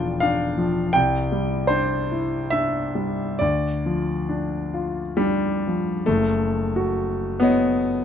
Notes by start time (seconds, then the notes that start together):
Already playing: E1 F3 D4 F4 G5 A5
0.20 D4 F5
0.58 F3
0.93 C2 G5
1.32 G3
1.67 D4 C5
2.11 E4
2.50 D4 E5
2.95 G3
3.39 D2 D5
3.86 F3
4.29 D4
4.74 F4
5.17 G3 D4
5.67 F3
6.06 F#1 A3
6.76 F#4
7.40 B3 C#5 D#5